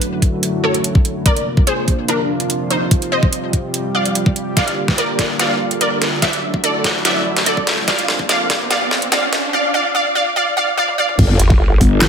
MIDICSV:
0, 0, Header, 1, 8, 480
1, 0, Start_track
1, 0, Tempo, 413793
1, 1458, Time_signature, 4, 2, 24, 8
1, 14017, End_track
2, 0, Start_track
2, 0, Title_t, "Synth pluck"
2, 0, Program_c, 0, 84
2, 0, Note_on_c, 0, 62, 76
2, 0, Note_on_c, 0, 71, 96
2, 647, Note_off_c, 0, 62, 0
2, 647, Note_off_c, 0, 71, 0
2, 738, Note_on_c, 0, 69, 77
2, 738, Note_on_c, 0, 73, 96
2, 1367, Note_off_c, 0, 69, 0
2, 1367, Note_off_c, 0, 73, 0
2, 1458, Note_on_c, 0, 70, 76
2, 1458, Note_on_c, 0, 74, 103
2, 1783, Note_off_c, 0, 70, 0
2, 1784, Note_off_c, 0, 74, 0
2, 1937, Note_on_c, 0, 68, 78
2, 1937, Note_on_c, 0, 72, 92
2, 2263, Note_off_c, 0, 68, 0
2, 2263, Note_off_c, 0, 72, 0
2, 2419, Note_on_c, 0, 62, 78
2, 2419, Note_on_c, 0, 70, 91
2, 3047, Note_off_c, 0, 62, 0
2, 3047, Note_off_c, 0, 70, 0
2, 3138, Note_on_c, 0, 63, 78
2, 3138, Note_on_c, 0, 72, 90
2, 3463, Note_off_c, 0, 63, 0
2, 3463, Note_off_c, 0, 72, 0
2, 3618, Note_on_c, 0, 72, 77
2, 3618, Note_on_c, 0, 75, 96
2, 4487, Note_off_c, 0, 72, 0
2, 4487, Note_off_c, 0, 75, 0
2, 4578, Note_on_c, 0, 74, 75
2, 4578, Note_on_c, 0, 77, 91
2, 5207, Note_off_c, 0, 74, 0
2, 5207, Note_off_c, 0, 77, 0
2, 5298, Note_on_c, 0, 74, 71
2, 5298, Note_on_c, 0, 77, 92
2, 5623, Note_off_c, 0, 74, 0
2, 5623, Note_off_c, 0, 77, 0
2, 5778, Note_on_c, 0, 70, 76
2, 5778, Note_on_c, 0, 74, 82
2, 6103, Note_off_c, 0, 70, 0
2, 6103, Note_off_c, 0, 74, 0
2, 6258, Note_on_c, 0, 77, 94
2, 6259, Note_on_c, 0, 74, 71
2, 6583, Note_off_c, 0, 77, 0
2, 6584, Note_off_c, 0, 74, 0
2, 6739, Note_on_c, 0, 70, 74
2, 6739, Note_on_c, 0, 74, 87
2, 7064, Note_off_c, 0, 70, 0
2, 7064, Note_off_c, 0, 74, 0
2, 7218, Note_on_c, 0, 74, 73
2, 7219, Note_on_c, 0, 76, 93
2, 7543, Note_off_c, 0, 74, 0
2, 7544, Note_off_c, 0, 76, 0
2, 7699, Note_on_c, 0, 69, 77
2, 7699, Note_on_c, 0, 74, 89
2, 8024, Note_off_c, 0, 69, 0
2, 8024, Note_off_c, 0, 74, 0
2, 8178, Note_on_c, 0, 76, 96
2, 8179, Note_on_c, 0, 74, 76
2, 8504, Note_off_c, 0, 74, 0
2, 8504, Note_off_c, 0, 76, 0
2, 8659, Note_on_c, 0, 69, 79
2, 8659, Note_on_c, 0, 74, 91
2, 8984, Note_off_c, 0, 69, 0
2, 8984, Note_off_c, 0, 74, 0
2, 9138, Note_on_c, 0, 74, 76
2, 9139, Note_on_c, 0, 77, 95
2, 9464, Note_off_c, 0, 74, 0
2, 9464, Note_off_c, 0, 77, 0
2, 9618, Note_on_c, 0, 74, 80
2, 9618, Note_on_c, 0, 77, 105
2, 9943, Note_off_c, 0, 74, 0
2, 9944, Note_off_c, 0, 77, 0
2, 10097, Note_on_c, 0, 74, 79
2, 10097, Note_on_c, 0, 77, 100
2, 10423, Note_off_c, 0, 74, 0
2, 10423, Note_off_c, 0, 77, 0
2, 10577, Note_on_c, 0, 77, 104
2, 10578, Note_on_c, 0, 74, 81
2, 10903, Note_off_c, 0, 74, 0
2, 10903, Note_off_c, 0, 77, 0
2, 11058, Note_on_c, 0, 74, 79
2, 11058, Note_on_c, 0, 77, 100
2, 11280, Note_off_c, 0, 74, 0
2, 11280, Note_off_c, 0, 77, 0
2, 11298, Note_on_c, 0, 74, 82
2, 11298, Note_on_c, 0, 77, 107
2, 11520, Note_off_c, 0, 74, 0
2, 11520, Note_off_c, 0, 77, 0
2, 11538, Note_on_c, 0, 74, 81
2, 11538, Note_on_c, 0, 77, 108
2, 11760, Note_off_c, 0, 74, 0
2, 11760, Note_off_c, 0, 77, 0
2, 11778, Note_on_c, 0, 74, 77
2, 11778, Note_on_c, 0, 77, 101
2, 12000, Note_off_c, 0, 74, 0
2, 12000, Note_off_c, 0, 77, 0
2, 12019, Note_on_c, 0, 74, 79
2, 12019, Note_on_c, 0, 77, 102
2, 12240, Note_off_c, 0, 74, 0
2, 12241, Note_off_c, 0, 77, 0
2, 12259, Note_on_c, 0, 74, 81
2, 12259, Note_on_c, 0, 77, 102
2, 12480, Note_off_c, 0, 74, 0
2, 12480, Note_off_c, 0, 77, 0
2, 12499, Note_on_c, 0, 74, 86
2, 12499, Note_on_c, 0, 77, 110
2, 12720, Note_off_c, 0, 77, 0
2, 12721, Note_off_c, 0, 74, 0
2, 12739, Note_on_c, 0, 74, 80
2, 12739, Note_on_c, 0, 77, 102
2, 12960, Note_off_c, 0, 74, 0
2, 12961, Note_off_c, 0, 77, 0
2, 14017, End_track
3, 0, Start_track
3, 0, Title_t, "Supersaw synth"
3, 0, Program_c, 1, 81
3, 0, Note_on_c, 1, 42, 85
3, 0, Note_on_c, 1, 50, 77
3, 0, Note_on_c, 1, 54, 79
3, 0, Note_on_c, 1, 57, 80
3, 0, Note_on_c, 1, 64, 80
3, 0, Note_on_c, 1, 66, 95
3, 1439, Note_off_c, 1, 42, 0
3, 1439, Note_off_c, 1, 50, 0
3, 1439, Note_off_c, 1, 54, 0
3, 1439, Note_off_c, 1, 57, 0
3, 1439, Note_off_c, 1, 64, 0
3, 1439, Note_off_c, 1, 66, 0
3, 1459, Note_on_c, 1, 48, 87
3, 1459, Note_on_c, 1, 53, 78
3, 1459, Note_on_c, 1, 58, 78
3, 1459, Note_on_c, 1, 62, 79
3, 1459, Note_on_c, 1, 65, 93
3, 3360, Note_off_c, 1, 58, 0
3, 3360, Note_off_c, 1, 62, 0
3, 3379, Note_on_c, 1, 55, 80
3, 3379, Note_on_c, 1, 67, 98
3, 5260, Note_off_c, 1, 48, 0
3, 5260, Note_off_c, 1, 53, 0
3, 5260, Note_off_c, 1, 65, 0
3, 5298, Note_on_c, 1, 50, 90
3, 5298, Note_on_c, 1, 58, 80
3, 5298, Note_on_c, 1, 65, 78
3, 7180, Note_off_c, 1, 55, 0
3, 7180, Note_off_c, 1, 67, 0
3, 7199, Note_off_c, 1, 58, 0
3, 7199, Note_off_c, 1, 65, 0
3, 7219, Note_on_c, 1, 42, 89
3, 7219, Note_on_c, 1, 54, 76
3, 7219, Note_on_c, 1, 66, 95
3, 7220, Note_on_c, 1, 57, 76
3, 7220, Note_on_c, 1, 64, 79
3, 9100, Note_off_c, 1, 50, 0
3, 9120, Note_off_c, 1, 42, 0
3, 9120, Note_off_c, 1, 54, 0
3, 9120, Note_off_c, 1, 57, 0
3, 9120, Note_off_c, 1, 64, 0
3, 9120, Note_off_c, 1, 66, 0
3, 9138, Note_on_c, 1, 65, 98
3, 9139, Note_on_c, 1, 48, 85
3, 9139, Note_on_c, 1, 53, 80
3, 9139, Note_on_c, 1, 58, 80
3, 9139, Note_on_c, 1, 62, 82
3, 11039, Note_off_c, 1, 48, 0
3, 11039, Note_off_c, 1, 53, 0
3, 11039, Note_off_c, 1, 62, 0
3, 11039, Note_off_c, 1, 65, 0
3, 11040, Note_off_c, 1, 58, 0
3, 12978, Note_on_c, 1, 50, 88
3, 12978, Note_on_c, 1, 55, 80
3, 12979, Note_on_c, 1, 58, 80
3, 12979, Note_on_c, 1, 67, 80
3, 12979, Note_on_c, 1, 70, 95
3, 14017, Note_off_c, 1, 50, 0
3, 14017, Note_off_c, 1, 55, 0
3, 14017, Note_off_c, 1, 58, 0
3, 14017, Note_off_c, 1, 67, 0
3, 14017, Note_off_c, 1, 70, 0
3, 14017, End_track
4, 0, Start_track
4, 0, Title_t, "Wobble bass"
4, 0, Program_c, 2, 39
4, 12978, Note_on_c, 2, 31, 94
4, 13200, Note_off_c, 2, 31, 0
4, 13698, Note_on_c, 2, 31, 97
4, 14017, Note_off_c, 2, 31, 0
4, 14017, End_track
5, 0, Start_track
5, 0, Title_t, "Wobble bass"
5, 0, Program_c, 3, 39
5, 13218, Note_on_c, 3, 31, 101
5, 13680, Note_off_c, 3, 31, 0
5, 14017, End_track
6, 0, Start_track
6, 0, Title_t, "Riser"
6, 0, Program_c, 4, 103
6, 5298, Note_on_c, 4, 60, 81
6, 11058, Note_off_c, 4, 60, 0
6, 14017, End_track
7, 0, Start_track
7, 0, Title_t, "Sub drop"
7, 0, Program_c, 5, 103
7, 12978, Note_on_c, 5, 60, 78
7, 14017, Note_off_c, 5, 60, 0
7, 14017, End_track
8, 0, Start_track
8, 0, Title_t, "Drums"
8, 18, Note_on_c, 9, 42, 75
8, 134, Note_off_c, 9, 42, 0
8, 258, Note_on_c, 9, 36, 63
8, 258, Note_on_c, 9, 42, 52
8, 374, Note_off_c, 9, 36, 0
8, 374, Note_off_c, 9, 42, 0
8, 498, Note_on_c, 9, 42, 81
8, 614, Note_off_c, 9, 42, 0
8, 864, Note_on_c, 9, 42, 55
8, 978, Note_off_c, 9, 42, 0
8, 978, Note_on_c, 9, 42, 81
8, 1094, Note_off_c, 9, 42, 0
8, 1103, Note_on_c, 9, 36, 112
8, 1217, Note_on_c, 9, 42, 51
8, 1219, Note_off_c, 9, 36, 0
8, 1333, Note_off_c, 9, 42, 0
8, 1458, Note_on_c, 9, 36, 117
8, 1458, Note_on_c, 9, 42, 77
8, 1574, Note_off_c, 9, 36, 0
8, 1574, Note_off_c, 9, 42, 0
8, 1583, Note_on_c, 9, 42, 51
8, 1699, Note_off_c, 9, 42, 0
8, 1824, Note_on_c, 9, 36, 111
8, 1938, Note_on_c, 9, 42, 75
8, 1940, Note_off_c, 9, 36, 0
8, 2054, Note_off_c, 9, 42, 0
8, 2178, Note_on_c, 9, 36, 64
8, 2178, Note_on_c, 9, 42, 51
8, 2294, Note_off_c, 9, 36, 0
8, 2294, Note_off_c, 9, 42, 0
8, 2418, Note_on_c, 9, 42, 77
8, 2534, Note_off_c, 9, 42, 0
8, 2784, Note_on_c, 9, 42, 52
8, 2898, Note_off_c, 9, 42, 0
8, 2898, Note_on_c, 9, 42, 77
8, 3014, Note_off_c, 9, 42, 0
8, 3138, Note_on_c, 9, 42, 50
8, 3254, Note_off_c, 9, 42, 0
8, 3378, Note_on_c, 9, 36, 121
8, 3378, Note_on_c, 9, 42, 76
8, 3494, Note_off_c, 9, 36, 0
8, 3494, Note_off_c, 9, 42, 0
8, 3504, Note_on_c, 9, 42, 48
8, 3620, Note_off_c, 9, 42, 0
8, 3744, Note_on_c, 9, 36, 112
8, 3858, Note_on_c, 9, 42, 74
8, 3860, Note_off_c, 9, 36, 0
8, 3974, Note_off_c, 9, 42, 0
8, 4098, Note_on_c, 9, 36, 63
8, 4098, Note_on_c, 9, 42, 49
8, 4214, Note_off_c, 9, 36, 0
8, 4214, Note_off_c, 9, 42, 0
8, 4338, Note_on_c, 9, 42, 78
8, 4454, Note_off_c, 9, 42, 0
8, 4704, Note_on_c, 9, 42, 51
8, 4818, Note_off_c, 9, 42, 0
8, 4818, Note_on_c, 9, 42, 75
8, 4934, Note_off_c, 9, 42, 0
8, 4944, Note_on_c, 9, 36, 115
8, 5058, Note_on_c, 9, 42, 50
8, 5060, Note_off_c, 9, 36, 0
8, 5174, Note_off_c, 9, 42, 0
8, 5298, Note_on_c, 9, 36, 116
8, 5299, Note_on_c, 9, 38, 50
8, 5299, Note_on_c, 9, 42, 75
8, 5414, Note_off_c, 9, 36, 0
8, 5415, Note_off_c, 9, 38, 0
8, 5415, Note_off_c, 9, 42, 0
8, 5424, Note_on_c, 9, 42, 48
8, 5540, Note_off_c, 9, 42, 0
8, 5664, Note_on_c, 9, 36, 103
8, 5664, Note_on_c, 9, 38, 43
8, 5778, Note_on_c, 9, 42, 73
8, 5780, Note_off_c, 9, 36, 0
8, 5780, Note_off_c, 9, 38, 0
8, 5894, Note_off_c, 9, 42, 0
8, 6018, Note_on_c, 9, 36, 63
8, 6018, Note_on_c, 9, 38, 50
8, 6018, Note_on_c, 9, 42, 50
8, 6134, Note_off_c, 9, 36, 0
8, 6134, Note_off_c, 9, 38, 0
8, 6134, Note_off_c, 9, 42, 0
8, 6258, Note_on_c, 9, 38, 55
8, 6258, Note_on_c, 9, 42, 81
8, 6374, Note_off_c, 9, 38, 0
8, 6374, Note_off_c, 9, 42, 0
8, 6624, Note_on_c, 9, 42, 51
8, 6739, Note_off_c, 9, 42, 0
8, 6739, Note_on_c, 9, 42, 76
8, 6855, Note_off_c, 9, 42, 0
8, 6979, Note_on_c, 9, 38, 57
8, 6979, Note_on_c, 9, 42, 49
8, 7095, Note_off_c, 9, 38, 0
8, 7095, Note_off_c, 9, 42, 0
8, 7218, Note_on_c, 9, 36, 116
8, 7219, Note_on_c, 9, 38, 60
8, 7219, Note_on_c, 9, 42, 80
8, 7334, Note_off_c, 9, 36, 0
8, 7335, Note_off_c, 9, 38, 0
8, 7335, Note_off_c, 9, 42, 0
8, 7345, Note_on_c, 9, 42, 49
8, 7461, Note_off_c, 9, 42, 0
8, 7584, Note_on_c, 9, 36, 106
8, 7699, Note_on_c, 9, 42, 77
8, 7700, Note_off_c, 9, 36, 0
8, 7815, Note_off_c, 9, 42, 0
8, 7938, Note_on_c, 9, 36, 59
8, 7938, Note_on_c, 9, 38, 65
8, 7938, Note_on_c, 9, 42, 50
8, 8054, Note_off_c, 9, 36, 0
8, 8054, Note_off_c, 9, 38, 0
8, 8054, Note_off_c, 9, 42, 0
8, 8178, Note_on_c, 9, 38, 68
8, 8178, Note_on_c, 9, 42, 82
8, 8294, Note_off_c, 9, 38, 0
8, 8294, Note_off_c, 9, 42, 0
8, 8544, Note_on_c, 9, 38, 62
8, 8544, Note_on_c, 9, 42, 53
8, 8658, Note_off_c, 9, 42, 0
8, 8658, Note_on_c, 9, 42, 78
8, 8660, Note_off_c, 9, 38, 0
8, 8774, Note_off_c, 9, 42, 0
8, 8784, Note_on_c, 9, 36, 101
8, 8898, Note_on_c, 9, 38, 70
8, 8898, Note_on_c, 9, 42, 51
8, 8900, Note_off_c, 9, 36, 0
8, 9014, Note_off_c, 9, 38, 0
8, 9014, Note_off_c, 9, 42, 0
8, 9138, Note_on_c, 9, 36, 114
8, 9138, Note_on_c, 9, 38, 74
8, 9138, Note_on_c, 9, 42, 83
8, 9254, Note_off_c, 9, 36, 0
8, 9254, Note_off_c, 9, 38, 0
8, 9254, Note_off_c, 9, 42, 0
8, 9264, Note_on_c, 9, 42, 55
8, 9378, Note_on_c, 9, 38, 79
8, 9380, Note_off_c, 9, 42, 0
8, 9494, Note_off_c, 9, 38, 0
8, 9504, Note_on_c, 9, 36, 105
8, 9618, Note_on_c, 9, 38, 77
8, 9618, Note_on_c, 9, 42, 85
8, 9620, Note_off_c, 9, 36, 0
8, 9734, Note_off_c, 9, 38, 0
8, 9734, Note_off_c, 9, 42, 0
8, 9858, Note_on_c, 9, 36, 59
8, 9859, Note_on_c, 9, 38, 79
8, 9859, Note_on_c, 9, 42, 54
8, 9974, Note_off_c, 9, 36, 0
8, 9975, Note_off_c, 9, 38, 0
8, 9975, Note_off_c, 9, 42, 0
8, 10099, Note_on_c, 9, 38, 83
8, 10099, Note_on_c, 9, 42, 83
8, 10215, Note_off_c, 9, 38, 0
8, 10215, Note_off_c, 9, 42, 0
8, 10339, Note_on_c, 9, 38, 82
8, 10455, Note_off_c, 9, 38, 0
8, 10465, Note_on_c, 9, 42, 54
8, 10579, Note_off_c, 9, 42, 0
8, 10579, Note_on_c, 9, 38, 89
8, 10579, Note_on_c, 9, 42, 84
8, 10695, Note_off_c, 9, 38, 0
8, 10695, Note_off_c, 9, 42, 0
8, 10819, Note_on_c, 9, 38, 88
8, 10819, Note_on_c, 9, 42, 56
8, 10935, Note_off_c, 9, 38, 0
8, 10935, Note_off_c, 9, 42, 0
8, 12498, Note_on_c, 9, 48, 61
8, 12614, Note_off_c, 9, 48, 0
8, 12624, Note_on_c, 9, 48, 61
8, 12740, Note_off_c, 9, 48, 0
8, 12864, Note_on_c, 9, 45, 82
8, 12978, Note_on_c, 9, 36, 123
8, 12978, Note_on_c, 9, 49, 102
8, 12980, Note_off_c, 9, 45, 0
8, 13094, Note_off_c, 9, 36, 0
8, 13094, Note_off_c, 9, 49, 0
8, 13218, Note_on_c, 9, 42, 84
8, 13334, Note_off_c, 9, 42, 0
8, 13344, Note_on_c, 9, 36, 109
8, 13460, Note_off_c, 9, 36, 0
8, 13698, Note_on_c, 9, 36, 62
8, 13698, Note_on_c, 9, 46, 59
8, 13814, Note_off_c, 9, 36, 0
8, 13814, Note_off_c, 9, 46, 0
8, 13938, Note_on_c, 9, 38, 123
8, 13938, Note_on_c, 9, 39, 102
8, 14017, Note_off_c, 9, 38, 0
8, 14017, Note_off_c, 9, 39, 0
8, 14017, End_track
0, 0, End_of_file